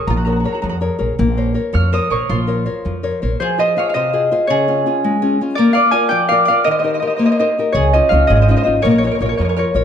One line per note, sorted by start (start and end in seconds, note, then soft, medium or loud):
0.00 0.19 G#4 soft
0.00 0.19 A#4 soft
0.00 0.20 C#5 soft
0.00 0.90 D#6 medium
0.00 0.64 F6 medium
0.07 0.44 A#1 medium
0.07 0.44 F3 medium
0.07 0.17 F4 medium
0.07 0.16 A#5 soft
0.16 0.24 F#4 soft
0.16 0.24 A#5 soft
0.25 0.31 F#4 soft
0.25 0.43 G#4 soft
0.25 0.43 A#4 soft
0.25 0.44 C#5 soft
0.25 0.29 A#5 soft
0.30 0.39 F#4 soft
0.30 0.36 A#5 soft
0.36 0.46 F#4 soft
0.36 0.46 A#5 soft
0.44 0.74 G#4 soft
0.44 0.75 A#4 soft
0.44 0.75 C#5 soft
0.44 0.52 A#5 soft
0.48 0.53 F#4 soft
0.53 0.61 F#4 soft
0.53 0.61 A#5 soft
0.62 0.88 F2 medium
0.62 0.99 F3 soft
0.62 0.68 F#4 soft
0.62 0.69 A#5 soft
0.69 0.76 F#4 soft
0.69 2.09 A#5 soft
0.81 0.98 G#4 soft
0.81 0.97 A#4 soft
0.81 0.98 C#5 soft
0.99 1.12 A#1 medium
0.99 1.14 G#4 soft
0.99 1.14 A#4 soft
0.99 1.14 C#5 soft
1.19 1.55 A#1 loud
1.19 1.55 A#3 medium
1.37 1.53 A#4 soft
1.37 1.53 C5 soft
1.37 1.54 C#5 soft
1.54 1.85 A#4 soft
1.54 1.85 C5 soft
1.54 1.85 C#5 soft
1.73 1.98 F2 medium
1.73 2.09 F3 soft
1.73 1.91 C#5 medium
1.73 2.85 F6 medium
1.92 2.10 A#4 soft
1.92 2.10 C5 medium
1.92 2.10 C5 soft
1.92 2.11 C#5 soft
1.92 3.11 D#6 medium
2.10 2.23 A#1 medium
2.10 2.28 A#4 medium
2.10 2.41 A#4 soft
2.10 2.41 C5 soft
2.10 2.41 C#5 soft
2.10 2.36 C#6 medium
2.29 2.66 A#1 medium
2.29 2.66 F3 medium
2.29 3.00 F4 medium
2.29 3.60 C6 medium
2.47 2.64 A#4 soft
2.47 2.64 C5 soft
2.47 2.65 C#5 soft
2.66 2.96 A#4 soft
2.66 2.96 C5 soft
2.66 2.97 C#5 soft
2.85 3.10 F2 medium
2.85 3.21 F3 soft
3.03 3.21 A#4 soft
3.03 3.21 C5 soft
3.03 3.22 C#5 soft
3.22 3.35 A#1 medium
3.22 3.37 A#4 soft
3.22 3.37 C5 soft
3.22 3.37 C#5 soft
3.40 3.77 F3 medium
3.40 3.59 G#4 medium
3.40 4.53 C5 medium
3.58 3.76 F4 soft
3.58 3.75 G#4 soft
3.58 3.76 C5 soft
3.58 3.77 C5 medium
3.58 3.94 D#5 medium
3.77 4.07 F4 soft
3.77 4.07 G#4 soft
3.77 4.07 C5 soft
3.77 3.88 C#5 medium
3.77 3.89 F5 medium
3.89 3.96 C#5 soft
3.89 5.56 F5 medium
3.94 4.31 C3 medium
3.94 4.47 C5 medium
3.94 5.61 D#5 medium
4.13 4.30 F4 soft
4.13 4.31 G#4 soft
4.13 4.31 C5 soft
4.32 4.47 F4 soft
4.32 4.47 G#4 soft
4.32 4.47 C5 soft
4.47 4.86 C#3 medium
4.47 5.37 G#4 medium
4.47 5.61 C#5 medium
4.68 4.85 C#4 soft
4.68 4.86 F4 soft
4.68 4.86 G#4 soft
4.86 5.16 C#4 soft
4.86 5.16 F4 soft
4.86 5.16 G#4 soft
5.04 5.40 G#3 medium
5.22 5.40 C#4 medium
5.22 5.40 F4 soft
5.22 5.41 G#4 soft
5.41 5.56 C#4 soft
5.41 5.56 F4 soft
5.41 5.56 G#4 soft
5.55 5.94 A#3 medium
5.55 5.74 A#4 medium
5.55 6.71 D5 medium
5.73 5.92 F4 soft
5.73 5.93 A#4 soft
5.73 5.93 D5 medium
5.73 6.28 F5 medium
5.77 5.92 D5 soft
5.91 6.23 F4 soft
5.91 6.23 A#4 soft
5.91 6.23 D5 soft
5.91 6.10 F5 medium
5.91 6.15 G#5 medium
6.09 6.47 F3 medium
6.09 6.28 D5 medium
6.09 7.64 G5 loud
6.29 6.48 F4 soft
6.29 6.49 A#4 soft
6.29 6.44 D5 medium
6.29 6.49 D5 medium
6.29 6.48 F5 medium
6.45 6.64 D5 medium
6.45 8.09 F5 medium
6.49 6.64 F4 medium
6.49 6.64 A#4 soft
6.49 6.64 D5 medium
6.64 7.02 D#3 medium
6.64 6.71 A#4 medium
6.64 6.71 D#5 medium
6.71 6.79 C5 medium
6.71 6.79 D#5 medium
6.79 6.86 C5 soft
6.79 6.85 D#5 medium
6.84 7.01 D#4 soft
6.84 7.01 G4 soft
6.84 7.01 A#4 soft
6.84 6.94 C5 soft
6.84 6.94 D#5 medium
6.94 7.01 C5 medium
6.94 6.99 D#5 medium
7.00 7.32 D#4 soft
7.00 7.32 G4 soft
7.00 7.32 A#4 soft
7.00 7.09 C5 soft
7.00 7.07 D#5 soft
7.07 7.16 C5 soft
7.07 7.16 D#5 medium
7.16 7.56 A#3 medium
7.16 7.24 C5 soft
7.16 7.25 D#5 soft
7.25 7.31 C5 soft
7.25 7.31 D#5 medium
7.32 7.39 C5 soft
7.32 7.39 D#5 medium
7.39 7.57 D#4 soft
7.39 7.58 G4 soft
7.39 7.58 A#4 medium
7.39 7.48 C5 medium
7.39 7.93 D#5 medium
7.59 7.73 D#4 soft
7.59 7.73 G4 soft
7.59 7.73 A#4 soft
7.72 7.99 C#2 loud
7.72 8.11 C#3 medium
7.72 7.93 G#4 medium
7.72 8.82 C#5 medium
7.93 8.12 C#4 soft
7.93 8.12 D#4 soft
7.93 8.12 F4 soft
7.93 8.11 C5 medium
7.93 8.27 D#5 medium
8.09 8.24 C#2 medium
8.09 8.42 C#4 soft
8.09 8.28 C#5 medium
8.09 9.76 F5 medium
8.14 8.42 D#4 soft
8.14 8.42 F4 soft
8.27 8.54 G#1 medium
8.27 8.66 G#3 medium
8.27 8.37 G#4 soft
8.27 8.35 D#5 medium
8.35 8.41 C5 soft
8.35 8.42 D#5 medium
8.42 8.49 C5 medium
8.42 8.50 D#5 medium
8.48 8.64 C#4 medium
8.48 8.65 D#4 soft
8.48 8.65 F4 medium
8.48 8.55 C5 soft
8.48 8.57 D#5 medium
8.57 8.62 C5 medium
8.57 8.64 D#5 medium
8.64 8.79 G#1 medium
8.64 8.80 C#4 soft
8.64 8.81 D#4 soft
8.64 8.81 F4 soft
8.64 8.72 C5 soft
8.64 9.84 D#5 medium
8.82 9.08 A#1 loud
8.82 9.20 A#3 medium
8.82 8.88 A#4 medium
8.82 8.90 C#5 medium
8.89 8.94 A#4 soft
8.89 8.98 C#5 medium
8.95 9.04 A#4 soft
8.95 9.06 C#5 medium
9.03 9.20 F4 soft
9.03 9.20 A#4 soft
9.03 9.10 A#4 soft
9.03 9.21 C#5 medium
9.03 9.15 C#5 soft
9.11 9.18 A#4 soft
9.11 9.21 C#5 medium
9.19 9.32 A#1 medium
9.19 9.50 F4 soft
9.19 9.25 A#4 soft
9.19 9.50 A#4 soft
9.19 9.29 C#5 soft
9.19 9.50 C#5 soft
9.26 9.30 A#4 soft
9.26 9.37 C#5 medium
9.32 9.40 A#4 soft
9.37 9.63 F2 medium
9.37 9.73 F3 medium
9.37 9.48 A#4 soft
9.37 9.44 C#5 soft
9.45 9.49 C#5 medium
9.49 9.55 A#4 soft
9.49 9.59 C#5 soft
9.56 9.73 F4 soft
9.56 9.64 A#4 soft
9.56 9.74 A#4 soft
9.56 9.74 C#5 medium
9.56 9.84 C#5 medium
9.74 9.84 A#1 medium
9.74 9.84 F4 soft
9.74 9.84 A#4 soft
9.74 9.84 C#5 medium